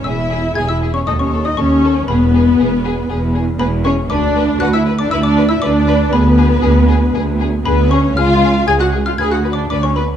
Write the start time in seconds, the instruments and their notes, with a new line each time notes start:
0.04 double bass section E1, cello section E2, viola section E4, violin section G#4 E5, xylophone E6
0.31 violin section G#4
0.55 double bass section E1, cello section E2, viola section G#4, violin section G#4 G#5, xylophone G#6
0.68 viola section E4, violin section E5, xylophone E6
0.82 violin section G#4
0.94 viola section C#4, violin section C#5, xylophone C#6
1.07 cello section D#2, double bass section D#2, viola section D#4, violin section A4 D#5, xylophone D#6
1.19 viola section C#4, violin section C#5, xylophone C#6
1.33 violin section A4
1.44 viola section D#4, violin section D#5, xylophone D#6
1.57 cello section D#2, double bass section D#2, viola section C#4, violin section A4 C#5, xylophone C#6
1.84 violin section A4
2.08 double bass section E1, cello section E2, viola section B3, violin section G#4 B4, xylophone B5
2.34 violin section G#4
2.59 double bass section E1, cello section E2, violin section G#4
2.85 violin section G#4
3.09 double bass section E1, cello section E2, violin section G#4
3.34 violin section G#4
3.59 double bass section E1, cello section E2, viola section B3, violin section G#4 B4, xylophone B5
3.85 viola section C#4, violin section G#4 C#5, xylophone C#6
4.10 cello section D2, double bass section D2, viola section D4, violin section B4 D5, xylophone D6
4.35 violin section B4
4.60 cello section D2, double bass section D2, viola section F#4, violin section B4 F#5, xylophone F#6
4.73 viola section E4, violin section E5, xylophone E6
4.86 violin section B4
4.99 viola section D4, violin section D5, xylophone D6
5.11 cello section D2, double bass section D2, viola section E4, violin section B4 E5, xylophone E6
5.23 viola section D4, violin section D5, xylophone D6
5.37 violin section B4
5.49 viola section E4, violin section E5, xylophone E6
5.62 cello section D2, double bass section D2, viola section D4, violin section B4 D5, xylophone D6
5.87 violin section B4
6.13 cello section D2, double bass section D2, viola section B3, violin section G#4 B4, xylophone B5
6.38 violin section G#4
6.63 cello section D2, double bass section D2, violin section G#4
6.89 violin section G#4
7.14 cello section D2, double bass section D2, violin section G#4
7.40 violin section G#4
7.65 cello section D2, double bass section D2, viola section B3, violin section G#4 B4, xylophone B5
7.91 viola section C#4, violin section G#4 C#5, xylophone C#6
8.17 cello section C#2, double bass section C#2, viola section F4, violin section G#4 F5, xylophone F6
8.43 violin section G#4
8.68 cello section C#2, double bass section C#2, viola section G#4, violin section G#4 G#5, xylophone G#6
8.80 viola section F#4, violin section F#5, xylophone F#6
8.93 violin section G#4
9.06 viola section F4, violin section F5, xylophone F6
9.18 double bass section D2, cello section D2, viola section G#4, violin section B4 G#5, xylophone G#6
9.31 viola section F#4, violin section F#5, xylophone F#6
9.44 violin section B4
9.53 viola section D4, violin section D5, xylophone D6
9.70 cello section D2, double bass section D2, viola section D4, violin section B4 D5, xylophone D6
9.83 viola section C#4, violin section C#5, xylophone C#6
9.96 viola section B3, violin section B4, xylophone B5